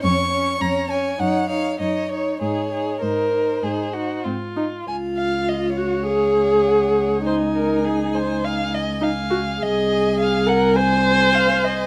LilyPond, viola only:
\new Staff \with { instrumentName = "Viola" } { \time 4/4 \key des \major \tempo 4 = 101 des'8 des'8 des'8 des'8 ees'8 ees'8 ees'8 ees'8 | ees'8 ees'8 ees'8 ees'8 ees'8 ees'8 c'8 ees'8 | f'4. ges'8 aes'2 | ees'2~ ees'8 r8 ees'8 ges'8 |
aes'4. bes'8 c''2 | }